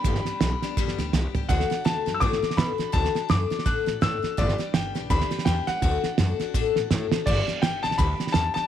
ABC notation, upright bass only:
X:1
M:4/4
L:1/8
Q:"Swing" 1/4=166
K:G
V:1 name="Upright bass" clef=bass
G,,, z B,,, z D,, D,, C,, z | D,, z D,, F,, A,, z B,, z | D,, z F,, z A,, A,, A,, z | G,,, z G,,, B,,, D,, z E,, z |
D,, z F,, z A,, A,, A,, z | G,,, z G,,, B,,, D,, z E,, z |]